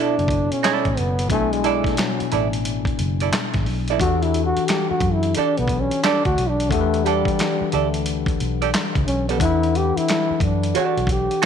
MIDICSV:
0, 0, Header, 1, 7, 480
1, 0, Start_track
1, 0, Key_signature, 1, "minor"
1, 0, Tempo, 674157
1, 928, Time_signature, 4, 2, 24, 8
1, 8156, End_track
2, 0, Start_track
2, 0, Title_t, "Hollow-body jazz guitar"
2, 0, Program_c, 0, 26
2, 0, Note_on_c, 0, 64, 83
2, 0, Note_on_c, 0, 69, 70
2, 0, Note_on_c, 0, 74, 75
2, 104, Note_off_c, 0, 64, 0
2, 108, Note_off_c, 0, 69, 0
2, 111, Note_off_c, 0, 74, 0
2, 449, Note_on_c, 0, 64, 82
2, 455, Note_on_c, 0, 69, 89
2, 461, Note_on_c, 0, 74, 96
2, 618, Note_off_c, 0, 64, 0
2, 621, Note_off_c, 0, 69, 0
2, 624, Note_off_c, 0, 74, 0
2, 1166, Note_on_c, 0, 64, 77
2, 1173, Note_on_c, 0, 69, 85
2, 1178, Note_on_c, 0, 74, 89
2, 1393, Note_off_c, 0, 64, 0
2, 1397, Note_off_c, 0, 69, 0
2, 1400, Note_off_c, 0, 74, 0
2, 1651, Note_on_c, 0, 64, 59
2, 1656, Note_on_c, 0, 69, 59
2, 1661, Note_on_c, 0, 74, 68
2, 1756, Note_off_c, 0, 64, 0
2, 1758, Note_off_c, 0, 69, 0
2, 1761, Note_off_c, 0, 74, 0
2, 2289, Note_on_c, 0, 74, 51
2, 2296, Note_on_c, 0, 69, 44
2, 2299, Note_on_c, 0, 64, 36
2, 2345, Note_off_c, 0, 74, 0
2, 2349, Note_off_c, 0, 69, 0
2, 2350, Note_off_c, 0, 64, 0
2, 2777, Note_on_c, 0, 74, 55
2, 2779, Note_on_c, 0, 69, 60
2, 2788, Note_on_c, 0, 64, 53
2, 2830, Note_off_c, 0, 74, 0
2, 2831, Note_off_c, 0, 69, 0
2, 2835, Note_off_c, 0, 64, 0
2, 3822, Note_on_c, 0, 67, 69
2, 3827, Note_on_c, 0, 69, 82
2, 3834, Note_on_c, 0, 74, 78
2, 3951, Note_off_c, 0, 67, 0
2, 3954, Note_off_c, 0, 69, 0
2, 3957, Note_off_c, 0, 74, 0
2, 4297, Note_on_c, 0, 67, 75
2, 4303, Note_on_c, 0, 69, 80
2, 4314, Note_on_c, 0, 74, 85
2, 4429, Note_off_c, 0, 67, 0
2, 4432, Note_off_c, 0, 69, 0
2, 4437, Note_off_c, 0, 74, 0
2, 5024, Note_on_c, 0, 67, 68
2, 5031, Note_on_c, 0, 69, 85
2, 5036, Note_on_c, 0, 74, 79
2, 5242, Note_off_c, 0, 67, 0
2, 5246, Note_off_c, 0, 69, 0
2, 5248, Note_off_c, 0, 74, 0
2, 5504, Note_on_c, 0, 67, 62
2, 5509, Note_on_c, 0, 69, 64
2, 5513, Note_on_c, 0, 74, 64
2, 5603, Note_off_c, 0, 67, 0
2, 5605, Note_off_c, 0, 69, 0
2, 5607, Note_off_c, 0, 74, 0
2, 6135, Note_on_c, 0, 74, 59
2, 6139, Note_on_c, 0, 69, 52
2, 6147, Note_on_c, 0, 67, 54
2, 6188, Note_off_c, 0, 74, 0
2, 6190, Note_off_c, 0, 69, 0
2, 6194, Note_off_c, 0, 67, 0
2, 6614, Note_on_c, 0, 74, 53
2, 6624, Note_on_c, 0, 69, 55
2, 6625, Note_on_c, 0, 67, 45
2, 6668, Note_off_c, 0, 74, 0
2, 6673, Note_off_c, 0, 69, 0
2, 6674, Note_off_c, 0, 67, 0
2, 7652, Note_on_c, 0, 67, 81
2, 7658, Note_on_c, 0, 69, 81
2, 7662, Note_on_c, 0, 74, 85
2, 7820, Note_off_c, 0, 67, 0
2, 7823, Note_off_c, 0, 69, 0
2, 7825, Note_off_c, 0, 74, 0
2, 8130, Note_on_c, 0, 67, 82
2, 8156, Note_off_c, 0, 67, 0
2, 8156, End_track
3, 0, Start_track
3, 0, Title_t, "Tine electric piano"
3, 0, Program_c, 1, 4
3, 0, Control_c, 1, 64, 127
3, 0, Note_on_c, 1, 47, 67
3, 0, Note_on_c, 1, 59, 60
3, 0, Note_on_c, 1, 64, 67
3, 0, Note_on_c, 1, 66, 62
3, 0, Note_on_c, 1, 69, 77
3, 0, Note_on_c, 1, 73, 62
3, 898, Note_off_c, 1, 47, 0
3, 901, Note_off_c, 1, 59, 0
3, 903, Note_off_c, 1, 73, 0
3, 907, Note_off_c, 1, 66, 0
3, 911, Note_off_c, 1, 64, 0
3, 914, Note_off_c, 1, 69, 0
3, 914, Note_on_c, 1, 47, 69
3, 919, Note_on_c, 1, 59, 60
3, 934, Note_on_c, 1, 62, 63
3, 941, Note_on_c, 1, 64, 66
3, 947, Note_on_c, 1, 80, 75
3, 2813, Note_off_c, 1, 47, 0
3, 2815, Note_off_c, 1, 59, 0
3, 2823, Note_off_c, 1, 62, 0
3, 2826, Note_off_c, 1, 64, 0
3, 2829, Note_off_c, 1, 80, 0
3, 2834, Note_on_c, 1, 52, 65
3, 2838, Note_on_c, 1, 62, 55
3, 2848, Note_on_c, 1, 66, 63
3, 2856, Note_on_c, 1, 67, 64
3, 2858, Control_c, 1, 64, 0
3, 2869, Note_on_c, 1, 69, 74
3, 2991, Control_c, 1, 64, 127
3, 4733, Note_off_c, 1, 52, 0
3, 4735, Note_off_c, 1, 62, 0
3, 4740, Note_off_c, 1, 66, 0
3, 4744, Note_off_c, 1, 67, 0
3, 4750, Note_off_c, 1, 69, 0
3, 4765, Note_on_c, 1, 52, 67
3, 4771, Note_on_c, 1, 62, 63
3, 4781, Note_on_c, 1, 78, 61
3, 4793, Note_on_c, 1, 67, 63
3, 4801, Note_on_c, 1, 69, 59
3, 4844, Note_off_c, 1, 69, 0
3, 4846, Note_on_c, 1, 71, 76
3, 6658, Note_off_c, 1, 52, 0
3, 6661, Note_off_c, 1, 62, 0
3, 6666, Note_off_c, 1, 78, 0
3, 6672, Note_off_c, 1, 67, 0
3, 6677, Note_on_c, 1, 52, 70
3, 6687, Note_on_c, 1, 62, 60
3, 6697, Note_on_c, 1, 78, 62
3, 6699, Note_off_c, 1, 71, 0
3, 6704, Note_on_c, 1, 69, 64
3, 6710, Note_on_c, 1, 71, 73
3, 8156, Note_off_c, 1, 52, 0
3, 8156, Note_off_c, 1, 62, 0
3, 8156, Note_off_c, 1, 69, 0
3, 8156, Note_off_c, 1, 71, 0
3, 8156, Note_off_c, 1, 78, 0
3, 8156, End_track
4, 0, Start_track
4, 0, Title_t, "Trombone"
4, 0, Program_c, 2, 57
4, 0, Note_on_c, 2, 62, 97
4, 370, Note_on_c, 2, 61, 97
4, 381, Note_off_c, 2, 62, 0
4, 700, Note_on_c, 2, 59, 89
4, 711, Note_off_c, 2, 61, 0
4, 930, Note_off_c, 2, 59, 0
4, 934, Note_on_c, 2, 57, 105
4, 1087, Note_on_c, 2, 56, 89
4, 1098, Note_off_c, 2, 57, 0
4, 1320, Note_on_c, 2, 57, 76
4, 1331, Note_off_c, 2, 56, 0
4, 1406, Note_on_c, 2, 54, 72
4, 1416, Note_off_c, 2, 57, 0
4, 1647, Note_off_c, 2, 54, 0
4, 2855, Note_on_c, 2, 66, 104
4, 3009, Note_on_c, 2, 64, 91
4, 3020, Note_off_c, 2, 66, 0
4, 3169, Note_off_c, 2, 64, 0
4, 3176, Note_on_c, 2, 66, 98
4, 3335, Note_on_c, 2, 67, 96
4, 3345, Note_off_c, 2, 66, 0
4, 3492, Note_off_c, 2, 67, 0
4, 3495, Note_on_c, 2, 66, 93
4, 3656, Note_on_c, 2, 64, 82
4, 3667, Note_off_c, 2, 66, 0
4, 3819, Note_on_c, 2, 62, 96
4, 3829, Note_off_c, 2, 64, 0
4, 3975, Note_on_c, 2, 59, 96
4, 3986, Note_off_c, 2, 62, 0
4, 4133, Note_on_c, 2, 61, 85
4, 4144, Note_off_c, 2, 59, 0
4, 4296, Note_on_c, 2, 62, 102
4, 4306, Note_off_c, 2, 61, 0
4, 4452, Note_off_c, 2, 62, 0
4, 4456, Note_on_c, 2, 66, 95
4, 4622, Note_on_c, 2, 62, 88
4, 4632, Note_off_c, 2, 66, 0
4, 4775, Note_on_c, 2, 57, 103
4, 4786, Note_off_c, 2, 62, 0
4, 5014, Note_on_c, 2, 55, 90
4, 5025, Note_off_c, 2, 57, 0
4, 5491, Note_off_c, 2, 55, 0
4, 5500, Note_on_c, 2, 57, 67
4, 5718, Note_off_c, 2, 57, 0
4, 6461, Note_on_c, 2, 61, 92
4, 6598, Note_off_c, 2, 61, 0
4, 6614, Note_on_c, 2, 59, 86
4, 6689, Note_off_c, 2, 59, 0
4, 6708, Note_on_c, 2, 64, 108
4, 6954, Note_on_c, 2, 67, 108
4, 6965, Note_off_c, 2, 64, 0
4, 7098, Note_on_c, 2, 64, 105
4, 7109, Note_off_c, 2, 67, 0
4, 7416, Note_off_c, 2, 64, 0
4, 7431, Note_on_c, 2, 62, 81
4, 7644, Note_off_c, 2, 62, 0
4, 7676, Note_on_c, 2, 66, 103
4, 7886, Note_off_c, 2, 66, 0
4, 7918, Note_on_c, 2, 67, 96
4, 8156, Note_off_c, 2, 67, 0
4, 8156, End_track
5, 0, Start_track
5, 0, Title_t, "Fingered electric bass"
5, 0, Program_c, 3, 33
5, 131, Note_on_c, 3, 30, 74
5, 347, Note_off_c, 3, 30, 0
5, 613, Note_on_c, 3, 33, 90
5, 687, Note_off_c, 3, 33, 0
5, 701, Note_on_c, 3, 30, 89
5, 930, Note_off_c, 3, 30, 0
5, 930, Note_on_c, 3, 35, 109
5, 1294, Note_off_c, 3, 35, 0
5, 1656, Note_on_c, 3, 33, 82
5, 2104, Note_off_c, 3, 33, 0
5, 2133, Note_on_c, 3, 30, 82
5, 2351, Note_off_c, 3, 30, 0
5, 2528, Note_on_c, 3, 32, 86
5, 2617, Note_off_c, 3, 32, 0
5, 2617, Note_on_c, 3, 35, 76
5, 2834, Note_off_c, 3, 35, 0
5, 2852, Note_on_c, 3, 40, 106
5, 3215, Note_off_c, 3, 40, 0
5, 3571, Note_on_c, 3, 42, 88
5, 3790, Note_off_c, 3, 42, 0
5, 3978, Note_on_c, 3, 35, 81
5, 4191, Note_off_c, 3, 35, 0
5, 4458, Note_on_c, 3, 38, 73
5, 4530, Note_off_c, 3, 38, 0
5, 4546, Note_on_c, 3, 35, 94
5, 4782, Note_off_c, 3, 35, 0
5, 4782, Note_on_c, 3, 40, 108
5, 5140, Note_off_c, 3, 40, 0
5, 5505, Note_on_c, 3, 38, 75
5, 5948, Note_off_c, 3, 38, 0
5, 5988, Note_on_c, 3, 35, 99
5, 6200, Note_off_c, 3, 35, 0
5, 6380, Note_on_c, 3, 37, 94
5, 6451, Note_off_c, 3, 37, 0
5, 6463, Note_on_c, 3, 35, 94
5, 6677, Note_off_c, 3, 35, 0
5, 6698, Note_on_c, 3, 40, 114
5, 7058, Note_off_c, 3, 40, 0
5, 7412, Note_on_c, 3, 42, 93
5, 7631, Note_off_c, 3, 42, 0
5, 7812, Note_on_c, 3, 35, 77
5, 8028, Note_off_c, 3, 35, 0
5, 8156, End_track
6, 0, Start_track
6, 0, Title_t, "Muted fingered electric bass strokes"
6, 1317, Note_on_c, 9, 29, 43
6, 1388, Note_off_c, 9, 29, 0
6, 1571, Note_on_c, 9, 29, 43
6, 1642, Note_off_c, 9, 29, 0
6, 3253, Note_on_c, 9, 29, 41
6, 3324, Note_off_c, 9, 29, 0
6, 3494, Note_on_c, 9, 29, 46
6, 3566, Note_off_c, 9, 29, 0
6, 3825, Note_on_c, 9, 29, 45
6, 3896, Note_off_c, 9, 29, 0
6, 5172, Note_on_c, 9, 29, 42
6, 5243, Note_off_c, 9, 29, 0
6, 5419, Note_on_c, 9, 29, 49
6, 5490, Note_off_c, 9, 29, 0
6, 7095, Note_on_c, 9, 29, 46
6, 7166, Note_off_c, 9, 29, 0
6, 7337, Note_on_c, 9, 29, 46
6, 7408, Note_off_c, 9, 29, 0
6, 7664, Note_on_c, 9, 29, 49
6, 7735, Note_off_c, 9, 29, 0
6, 8156, End_track
7, 0, Start_track
7, 0, Title_t, "Drums"
7, 135, Note_on_c, 9, 42, 31
7, 200, Note_on_c, 9, 36, 88
7, 207, Note_off_c, 9, 42, 0
7, 217, Note_on_c, 9, 42, 58
7, 271, Note_off_c, 9, 36, 0
7, 288, Note_off_c, 9, 42, 0
7, 368, Note_on_c, 9, 42, 43
7, 439, Note_off_c, 9, 42, 0
7, 457, Note_on_c, 9, 42, 82
7, 461, Note_on_c, 9, 39, 81
7, 463, Note_on_c, 9, 38, 104
7, 528, Note_off_c, 9, 42, 0
7, 532, Note_off_c, 9, 39, 0
7, 534, Note_off_c, 9, 38, 0
7, 605, Note_on_c, 9, 42, 28
7, 606, Note_on_c, 9, 36, 65
7, 677, Note_off_c, 9, 42, 0
7, 678, Note_off_c, 9, 36, 0
7, 693, Note_on_c, 9, 42, 62
7, 764, Note_off_c, 9, 42, 0
7, 846, Note_on_c, 9, 42, 53
7, 917, Note_off_c, 9, 42, 0
7, 923, Note_on_c, 9, 36, 102
7, 926, Note_on_c, 9, 42, 95
7, 994, Note_off_c, 9, 36, 0
7, 997, Note_off_c, 9, 42, 0
7, 1088, Note_on_c, 9, 42, 33
7, 1159, Note_off_c, 9, 42, 0
7, 1169, Note_on_c, 9, 42, 53
7, 1240, Note_off_c, 9, 42, 0
7, 1312, Note_on_c, 9, 36, 80
7, 1328, Note_on_c, 9, 42, 40
7, 1337, Note_on_c, 9, 38, 32
7, 1383, Note_off_c, 9, 36, 0
7, 1399, Note_off_c, 9, 42, 0
7, 1405, Note_on_c, 9, 42, 87
7, 1408, Note_off_c, 9, 38, 0
7, 1416, Note_on_c, 9, 39, 92
7, 1418, Note_on_c, 9, 38, 115
7, 1476, Note_off_c, 9, 42, 0
7, 1488, Note_off_c, 9, 39, 0
7, 1490, Note_off_c, 9, 38, 0
7, 1568, Note_on_c, 9, 42, 37
7, 1640, Note_off_c, 9, 42, 0
7, 1649, Note_on_c, 9, 42, 60
7, 1720, Note_off_c, 9, 42, 0
7, 1803, Note_on_c, 9, 42, 45
7, 1874, Note_off_c, 9, 42, 0
7, 1888, Note_on_c, 9, 42, 81
7, 1959, Note_off_c, 9, 42, 0
7, 2030, Note_on_c, 9, 36, 84
7, 2045, Note_on_c, 9, 42, 35
7, 2101, Note_off_c, 9, 36, 0
7, 2116, Note_off_c, 9, 42, 0
7, 2128, Note_on_c, 9, 42, 64
7, 2199, Note_off_c, 9, 42, 0
7, 2281, Note_on_c, 9, 42, 46
7, 2353, Note_off_c, 9, 42, 0
7, 2368, Note_on_c, 9, 42, 81
7, 2372, Note_on_c, 9, 39, 89
7, 2374, Note_on_c, 9, 38, 99
7, 2439, Note_off_c, 9, 42, 0
7, 2443, Note_off_c, 9, 39, 0
7, 2445, Note_off_c, 9, 38, 0
7, 2518, Note_on_c, 9, 42, 32
7, 2523, Note_on_c, 9, 36, 72
7, 2530, Note_on_c, 9, 38, 27
7, 2589, Note_off_c, 9, 42, 0
7, 2594, Note_off_c, 9, 36, 0
7, 2602, Note_off_c, 9, 38, 0
7, 2608, Note_on_c, 9, 46, 44
7, 2680, Note_off_c, 9, 46, 0
7, 2760, Note_on_c, 9, 42, 48
7, 2831, Note_off_c, 9, 42, 0
7, 2845, Note_on_c, 9, 36, 114
7, 2853, Note_on_c, 9, 42, 95
7, 2916, Note_off_c, 9, 36, 0
7, 2925, Note_off_c, 9, 42, 0
7, 3008, Note_on_c, 9, 42, 36
7, 3080, Note_off_c, 9, 42, 0
7, 3093, Note_on_c, 9, 42, 54
7, 3164, Note_off_c, 9, 42, 0
7, 3251, Note_on_c, 9, 42, 40
7, 3322, Note_off_c, 9, 42, 0
7, 3333, Note_on_c, 9, 42, 83
7, 3345, Note_on_c, 9, 39, 93
7, 3347, Note_on_c, 9, 38, 111
7, 3404, Note_off_c, 9, 42, 0
7, 3416, Note_off_c, 9, 39, 0
7, 3418, Note_off_c, 9, 38, 0
7, 3564, Note_on_c, 9, 36, 100
7, 3566, Note_on_c, 9, 42, 56
7, 3635, Note_off_c, 9, 36, 0
7, 3637, Note_off_c, 9, 42, 0
7, 3723, Note_on_c, 9, 42, 42
7, 3794, Note_off_c, 9, 42, 0
7, 3806, Note_on_c, 9, 42, 77
7, 3877, Note_off_c, 9, 42, 0
7, 3969, Note_on_c, 9, 42, 35
7, 4041, Note_off_c, 9, 42, 0
7, 4041, Note_on_c, 9, 36, 91
7, 4054, Note_on_c, 9, 42, 58
7, 4113, Note_off_c, 9, 36, 0
7, 4125, Note_off_c, 9, 42, 0
7, 4211, Note_on_c, 9, 42, 46
7, 4282, Note_off_c, 9, 42, 0
7, 4297, Note_on_c, 9, 42, 91
7, 4301, Note_on_c, 9, 39, 84
7, 4303, Note_on_c, 9, 38, 102
7, 4369, Note_off_c, 9, 42, 0
7, 4373, Note_off_c, 9, 39, 0
7, 4375, Note_off_c, 9, 38, 0
7, 4451, Note_on_c, 9, 42, 28
7, 4452, Note_on_c, 9, 36, 72
7, 4522, Note_off_c, 9, 42, 0
7, 4524, Note_off_c, 9, 36, 0
7, 4542, Note_on_c, 9, 42, 69
7, 4614, Note_off_c, 9, 42, 0
7, 4699, Note_on_c, 9, 42, 49
7, 4770, Note_off_c, 9, 42, 0
7, 4775, Note_on_c, 9, 36, 101
7, 4786, Note_on_c, 9, 42, 84
7, 4846, Note_off_c, 9, 36, 0
7, 4857, Note_off_c, 9, 42, 0
7, 4940, Note_on_c, 9, 42, 35
7, 5011, Note_off_c, 9, 42, 0
7, 5028, Note_on_c, 9, 42, 55
7, 5099, Note_off_c, 9, 42, 0
7, 5165, Note_on_c, 9, 36, 84
7, 5184, Note_on_c, 9, 42, 44
7, 5236, Note_off_c, 9, 36, 0
7, 5255, Note_off_c, 9, 42, 0
7, 5263, Note_on_c, 9, 42, 84
7, 5275, Note_on_c, 9, 39, 97
7, 5276, Note_on_c, 9, 38, 115
7, 5334, Note_off_c, 9, 42, 0
7, 5346, Note_off_c, 9, 39, 0
7, 5348, Note_off_c, 9, 38, 0
7, 5498, Note_on_c, 9, 42, 60
7, 5569, Note_off_c, 9, 42, 0
7, 5653, Note_on_c, 9, 42, 43
7, 5724, Note_off_c, 9, 42, 0
7, 5737, Note_on_c, 9, 42, 76
7, 5808, Note_off_c, 9, 42, 0
7, 5883, Note_on_c, 9, 36, 87
7, 5897, Note_on_c, 9, 42, 39
7, 5954, Note_off_c, 9, 36, 0
7, 5969, Note_off_c, 9, 42, 0
7, 5983, Note_on_c, 9, 42, 59
7, 6054, Note_off_c, 9, 42, 0
7, 6137, Note_on_c, 9, 42, 45
7, 6208, Note_off_c, 9, 42, 0
7, 6221, Note_on_c, 9, 42, 83
7, 6225, Note_on_c, 9, 39, 85
7, 6227, Note_on_c, 9, 38, 106
7, 6292, Note_off_c, 9, 42, 0
7, 6296, Note_off_c, 9, 39, 0
7, 6298, Note_off_c, 9, 38, 0
7, 6375, Note_on_c, 9, 36, 76
7, 6378, Note_on_c, 9, 42, 33
7, 6446, Note_off_c, 9, 36, 0
7, 6449, Note_off_c, 9, 42, 0
7, 6464, Note_on_c, 9, 42, 61
7, 6535, Note_off_c, 9, 42, 0
7, 6616, Note_on_c, 9, 42, 50
7, 6687, Note_off_c, 9, 42, 0
7, 6693, Note_on_c, 9, 36, 104
7, 6699, Note_on_c, 9, 42, 96
7, 6764, Note_off_c, 9, 36, 0
7, 6770, Note_off_c, 9, 42, 0
7, 6859, Note_on_c, 9, 42, 37
7, 6931, Note_off_c, 9, 42, 0
7, 6944, Note_on_c, 9, 42, 51
7, 7015, Note_off_c, 9, 42, 0
7, 7102, Note_on_c, 9, 42, 45
7, 7173, Note_off_c, 9, 42, 0
7, 7180, Note_on_c, 9, 42, 86
7, 7192, Note_on_c, 9, 39, 89
7, 7194, Note_on_c, 9, 38, 117
7, 7252, Note_off_c, 9, 42, 0
7, 7263, Note_off_c, 9, 39, 0
7, 7265, Note_off_c, 9, 38, 0
7, 7407, Note_on_c, 9, 36, 90
7, 7412, Note_on_c, 9, 42, 62
7, 7478, Note_off_c, 9, 36, 0
7, 7483, Note_off_c, 9, 42, 0
7, 7572, Note_on_c, 9, 42, 42
7, 7643, Note_off_c, 9, 42, 0
7, 7654, Note_on_c, 9, 42, 71
7, 7725, Note_off_c, 9, 42, 0
7, 7814, Note_on_c, 9, 42, 36
7, 7881, Note_on_c, 9, 36, 96
7, 7885, Note_off_c, 9, 42, 0
7, 7897, Note_on_c, 9, 42, 66
7, 7953, Note_off_c, 9, 36, 0
7, 7968, Note_off_c, 9, 42, 0
7, 8052, Note_on_c, 9, 42, 47
7, 8124, Note_off_c, 9, 42, 0
7, 8156, End_track
0, 0, End_of_file